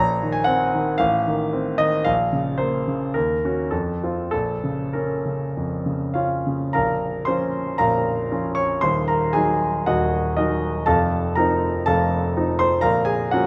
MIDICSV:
0, 0, Header, 1, 2, 480
1, 0, Start_track
1, 0, Key_signature, -5, "minor"
1, 0, Tempo, 522648
1, 914, Tempo, 543478
1, 1873, Time_signature, 4, 2, 24, 8
1, 3314, Tempo, 606673
1, 5714, Tempo, 518583
1, 9074, Tempo, 499168
1, 10514, Tempo, 482315
1, 12100, End_track
2, 0, Start_track
2, 0, Title_t, "Grand piano"
2, 0, Program_c, 0, 0
2, 0, Note_on_c, 0, 34, 59
2, 0, Note_on_c, 0, 82, 86
2, 101, Control_c, 0, 64, 127
2, 209, Note_on_c, 0, 51, 38
2, 298, Note_on_c, 0, 80, 70
2, 309, Note_off_c, 0, 82, 0
2, 407, Note_on_c, 0, 78, 85
2, 426, Note_off_c, 0, 80, 0
2, 426, Note_on_c, 0, 60, 46
2, 585, Note_off_c, 0, 51, 0
2, 681, Note_on_c, 0, 51, 42
2, 813, Note_off_c, 0, 60, 0
2, 890, Note_off_c, 0, 34, 0
2, 898, Note_on_c, 0, 77, 80
2, 901, Note_off_c, 0, 78, 0
2, 917, Note_on_c, 0, 33, 54
2, 918, Note_off_c, 0, 51, 0
2, 930, Control_c, 0, 64, 0
2, 1063, Control_c, 0, 64, 127
2, 1158, Note_on_c, 0, 51, 43
2, 1386, Note_on_c, 0, 60, 37
2, 1542, Note_off_c, 0, 51, 0
2, 1607, Note_on_c, 0, 75, 85
2, 1622, Note_on_c, 0, 51, 37
2, 1627, Note_off_c, 0, 77, 0
2, 1774, Note_off_c, 0, 60, 0
2, 1841, Note_on_c, 0, 77, 80
2, 1845, Note_off_c, 0, 33, 0
2, 1853, Note_on_c, 0, 34, 53
2, 1859, Note_off_c, 0, 75, 0
2, 1866, Note_off_c, 0, 51, 0
2, 1886, Control_c, 0, 64, 0
2, 2055, Control_c, 0, 64, 127
2, 2090, Note_on_c, 0, 49, 36
2, 2311, Note_on_c, 0, 72, 69
2, 2321, Note_on_c, 0, 58, 39
2, 2331, Note_off_c, 0, 77, 0
2, 2481, Note_off_c, 0, 49, 0
2, 2575, Note_on_c, 0, 49, 35
2, 2714, Note_off_c, 0, 58, 0
2, 2783, Note_off_c, 0, 34, 0
2, 2803, Note_off_c, 0, 72, 0
2, 2809, Note_on_c, 0, 70, 59
2, 2816, Note_off_c, 0, 49, 0
2, 2822, Note_on_c, 0, 39, 44
2, 2837, Control_c, 0, 64, 0
2, 2984, Control_c, 0, 64, 127
2, 3080, Note_on_c, 0, 61, 32
2, 3084, Note_on_c, 0, 66, 37
2, 3299, Note_off_c, 0, 61, 0
2, 3300, Note_off_c, 0, 39, 0
2, 3301, Note_off_c, 0, 66, 0
2, 3308, Note_off_c, 0, 70, 0
2, 3309, Note_on_c, 0, 69, 52
2, 3317, Note_on_c, 0, 41, 37
2, 3331, Control_c, 0, 64, 0
2, 3469, Control_c, 0, 64, 127
2, 3569, Note_on_c, 0, 60, 30
2, 3569, Note_on_c, 0, 65, 37
2, 3775, Note_off_c, 0, 69, 0
2, 3782, Note_off_c, 0, 60, 0
2, 3782, Note_off_c, 0, 65, 0
2, 3784, Note_off_c, 0, 41, 0
2, 3787, Note_on_c, 0, 69, 65
2, 3807, Note_on_c, 0, 34, 42
2, 3816, Control_c, 0, 64, 0
2, 3952, Control_c, 0, 64, 127
2, 4045, Note_on_c, 0, 49, 29
2, 4279, Note_on_c, 0, 70, 44
2, 4286, Note_off_c, 0, 69, 0
2, 4293, Note_on_c, 0, 61, 33
2, 4438, Note_off_c, 0, 49, 0
2, 4534, Note_on_c, 0, 49, 30
2, 4678, Note_off_c, 0, 61, 0
2, 4747, Note_off_c, 0, 34, 0
2, 4783, Note_on_c, 0, 41, 30
2, 4912, Note_off_c, 0, 49, 0
2, 5012, Note_on_c, 0, 49, 31
2, 5153, Note_off_c, 0, 41, 0
2, 5233, Note_on_c, 0, 77, 49
2, 5241, Note_on_c, 0, 73, 33
2, 5244, Note_on_c, 0, 65, 37
2, 5245, Note_on_c, 0, 61, 29
2, 5390, Note_off_c, 0, 49, 0
2, 5479, Note_off_c, 0, 70, 0
2, 5493, Note_on_c, 0, 49, 31
2, 5627, Note_off_c, 0, 61, 0
2, 5682, Note_off_c, 0, 73, 0
2, 5684, Note_off_c, 0, 65, 0
2, 5697, Note_off_c, 0, 77, 0
2, 5702, Note_on_c, 0, 82, 65
2, 5709, Note_on_c, 0, 77, 50
2, 5717, Note_on_c, 0, 70, 52
2, 5720, Note_off_c, 0, 49, 0
2, 5720, Note_on_c, 0, 22, 39
2, 5724, Note_on_c, 0, 34, 39
2, 5734, Control_c, 0, 64, 0
2, 5862, Control_c, 0, 64, 127
2, 6168, Note_off_c, 0, 77, 0
2, 6173, Note_off_c, 0, 70, 0
2, 6182, Note_on_c, 0, 84, 59
2, 6199, Note_off_c, 0, 82, 0
2, 6199, Note_on_c, 0, 72, 55
2, 6207, Note_on_c, 0, 53, 33
2, 6208, Note_on_c, 0, 61, 34
2, 6215, Note_on_c, 0, 65, 33
2, 6645, Note_off_c, 0, 53, 0
2, 6645, Note_off_c, 0, 72, 0
2, 6646, Note_off_c, 0, 61, 0
2, 6650, Note_off_c, 0, 65, 0
2, 6656, Note_off_c, 0, 22, 0
2, 6658, Note_off_c, 0, 34, 0
2, 6670, Note_off_c, 0, 84, 0
2, 6672, Note_on_c, 0, 82, 75
2, 6678, Note_on_c, 0, 77, 54
2, 6681, Note_on_c, 0, 70, 57
2, 6689, Note_on_c, 0, 34, 43
2, 6690, Note_on_c, 0, 22, 43
2, 7167, Note_on_c, 0, 53, 30
2, 7167, Note_on_c, 0, 61, 33
2, 7170, Note_on_c, 0, 65, 33
2, 7365, Note_off_c, 0, 77, 0
2, 7367, Note_off_c, 0, 70, 0
2, 7383, Note_on_c, 0, 85, 70
2, 7388, Note_on_c, 0, 73, 56
2, 7399, Note_off_c, 0, 82, 0
2, 7610, Note_off_c, 0, 53, 0
2, 7610, Note_off_c, 0, 61, 0
2, 7611, Note_off_c, 0, 65, 0
2, 7620, Note_off_c, 0, 22, 0
2, 7620, Note_off_c, 0, 34, 0
2, 7620, Note_off_c, 0, 73, 0
2, 7626, Note_on_c, 0, 84, 71
2, 7634, Note_off_c, 0, 85, 0
2, 7638, Note_on_c, 0, 72, 51
2, 7641, Note_on_c, 0, 27, 42
2, 7641, Note_on_c, 0, 39, 45
2, 7660, Control_c, 0, 64, 0
2, 7801, Control_c, 0, 64, 127
2, 7865, Note_off_c, 0, 72, 0
2, 7872, Note_on_c, 0, 82, 64
2, 7876, Note_off_c, 0, 84, 0
2, 7878, Note_on_c, 0, 70, 50
2, 8106, Note_off_c, 0, 70, 0
2, 8106, Note_on_c, 0, 80, 69
2, 8109, Note_on_c, 0, 68, 51
2, 8120, Note_off_c, 0, 82, 0
2, 8121, Note_on_c, 0, 54, 34
2, 8123, Note_on_c, 0, 63, 35
2, 8563, Note_off_c, 0, 68, 0
2, 8566, Note_off_c, 0, 54, 0
2, 8567, Note_off_c, 0, 63, 0
2, 8575, Note_off_c, 0, 27, 0
2, 8575, Note_off_c, 0, 39, 0
2, 8595, Note_off_c, 0, 80, 0
2, 8600, Note_on_c, 0, 78, 64
2, 8607, Note_on_c, 0, 39, 41
2, 8607, Note_on_c, 0, 66, 53
2, 8607, Note_on_c, 0, 75, 48
2, 8611, Note_on_c, 0, 27, 42
2, 9044, Note_off_c, 0, 66, 0
2, 9044, Note_off_c, 0, 75, 0
2, 9064, Note_on_c, 0, 75, 59
2, 9072, Note_on_c, 0, 70, 42
2, 9073, Note_off_c, 0, 78, 0
2, 9077, Note_on_c, 0, 54, 30
2, 9077, Note_on_c, 0, 63, 40
2, 9517, Note_off_c, 0, 54, 0
2, 9520, Note_off_c, 0, 70, 0
2, 9522, Note_off_c, 0, 63, 0
2, 9527, Note_off_c, 0, 39, 0
2, 9529, Note_off_c, 0, 27, 0
2, 9539, Note_on_c, 0, 81, 73
2, 9546, Note_on_c, 0, 69, 58
2, 9549, Note_off_c, 0, 75, 0
2, 9549, Note_on_c, 0, 77, 56
2, 9554, Note_on_c, 0, 41, 46
2, 9559, Note_on_c, 0, 29, 41
2, 9570, Control_c, 0, 64, 0
2, 9721, Control_c, 0, 64, 127
2, 9997, Note_off_c, 0, 69, 0
2, 9999, Note_off_c, 0, 77, 0
2, 10015, Note_on_c, 0, 82, 70
2, 10025, Note_on_c, 0, 70, 50
2, 10028, Note_off_c, 0, 81, 0
2, 10031, Note_on_c, 0, 53, 37
2, 10038, Note_on_c, 0, 60, 36
2, 10039, Note_on_c, 0, 63, 38
2, 10475, Note_off_c, 0, 53, 0
2, 10476, Note_off_c, 0, 70, 0
2, 10478, Note_off_c, 0, 60, 0
2, 10478, Note_off_c, 0, 63, 0
2, 10486, Note_off_c, 0, 41, 0
2, 10488, Note_off_c, 0, 29, 0
2, 10499, Note_on_c, 0, 81, 79
2, 10505, Note_off_c, 0, 82, 0
2, 10509, Note_on_c, 0, 69, 53
2, 10513, Note_on_c, 0, 29, 47
2, 10513, Note_on_c, 0, 77, 57
2, 10517, Note_on_c, 0, 41, 43
2, 11005, Note_on_c, 0, 60, 32
2, 11006, Note_on_c, 0, 53, 31
2, 11006, Note_on_c, 0, 63, 36
2, 11193, Note_off_c, 0, 69, 0
2, 11195, Note_off_c, 0, 77, 0
2, 11227, Note_on_c, 0, 84, 78
2, 11228, Note_off_c, 0, 81, 0
2, 11241, Note_on_c, 0, 72, 63
2, 11436, Note_off_c, 0, 60, 0
2, 11437, Note_off_c, 0, 53, 0
2, 11437, Note_off_c, 0, 63, 0
2, 11443, Note_off_c, 0, 29, 0
2, 11445, Note_off_c, 0, 41, 0
2, 11448, Note_on_c, 0, 82, 75
2, 11455, Note_on_c, 0, 77, 59
2, 11459, Note_off_c, 0, 72, 0
2, 11460, Note_on_c, 0, 70, 54
2, 11465, Note_on_c, 0, 22, 45
2, 11467, Note_on_c, 0, 34, 48
2, 11468, Note_off_c, 0, 84, 0
2, 11487, Control_c, 0, 64, 0
2, 11611, Control_c, 0, 64, 127
2, 11684, Note_off_c, 0, 77, 0
2, 11684, Note_on_c, 0, 80, 72
2, 11686, Note_off_c, 0, 70, 0
2, 11693, Note_on_c, 0, 68, 52
2, 11697, Note_off_c, 0, 82, 0
2, 11926, Note_off_c, 0, 68, 0
2, 11938, Note_off_c, 0, 80, 0
2, 11947, Note_on_c, 0, 78, 68
2, 11957, Note_on_c, 0, 66, 55
2, 11962, Note_on_c, 0, 53, 36
2, 11965, Note_on_c, 0, 58, 37
2, 11968, Note_on_c, 0, 61, 43
2, 12100, Note_off_c, 0, 22, 0
2, 12100, Note_off_c, 0, 34, 0
2, 12100, Note_off_c, 0, 53, 0
2, 12100, Note_off_c, 0, 58, 0
2, 12100, Note_off_c, 0, 61, 0
2, 12100, Note_off_c, 0, 66, 0
2, 12100, Note_off_c, 0, 78, 0
2, 12100, End_track
0, 0, End_of_file